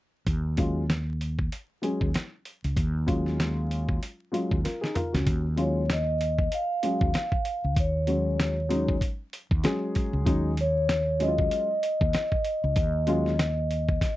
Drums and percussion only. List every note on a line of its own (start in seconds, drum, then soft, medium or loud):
0.27 kick medium
0.27 closed hi-hat medium
0.57 kick medium
0.57 closed hi-hat medium
0.90 snare medium
0.90 closed hi-hat medium
1.21 closed hi-hat medium
1.39 kick medium
1.52 closed hi-hat medium
1.83 closed hi-hat medium
2.01 kick medium
2.14 snare loud
2.14 closed hi-hat medium
2.45 closed hi-hat medium
2.64 closed hi-hat soft
2.77 kick medium
2.77 closed hi-hat medium
3.08 kick medium
3.08 closed hi-hat medium
3.26 snare soft
3.40 snare loud
3.40 closed hi-hat medium
3.71 closed hi-hat medium
3.89 kick medium
4.03 closed hi-hat medium
4.34 closed hi-hat medium
4.51 kick medium
4.65 snare soft
4.65 closed hi-hat medium
4.84 snare medium
4.95 closed hi-hat medium
4.95 mid tom medium
5.15 snare medium
5.15 closed hi-hat soft
5.27 kick loud
5.27 closed hi-hat medium
5.58 closed hi-hat medium
5.90 snare loud
5.90 closed hi-hat medium
6.21 closed hi-hat medium
6.39 kick medium
6.52 closed hi-hat medium
6.83 closed hi-hat medium
7.01 kick loud
7.14 snare loud
7.14 closed hi-hat medium
7.32 kick medium
7.45 closed hi-hat medium
7.76 kick medium
7.76 closed hi-hat medium
8.07 closed hi-hat medium
8.40 snare loud
8.40 closed hi-hat medium
8.71 closed hi-hat medium
8.88 kick medium
9.01 kick medium
9.01 closed hi-hat medium
9.33 closed hi-hat medium
9.51 kick loud
9.64 snare loud
9.64 closed hi-hat medium
9.95 kick medium
9.95 closed hi-hat medium
10.27 kick loud
10.27 closed hi-hat medium
10.57 closed hi-hat medium
10.89 snare loud
10.89 closed hi-hat medium
11.20 closed hi-hat medium
11.38 kick medium
11.51 closed hi-hat medium
11.83 closed hi-hat medium
12.01 kick loud
12.13 snare loud
12.13 closed hi-hat medium
12.32 kick medium
12.45 closed hi-hat medium
12.76 kick loud
12.76 closed hi-hat medium
13.07 closed hi-hat medium
13.26 snare soft
13.39 snare loud
13.39 closed hi-hat medium
13.71 closed hi-hat medium
13.89 kick medium
14.01 kick medium
14.01 snare medium
14.01 closed hi-hat medium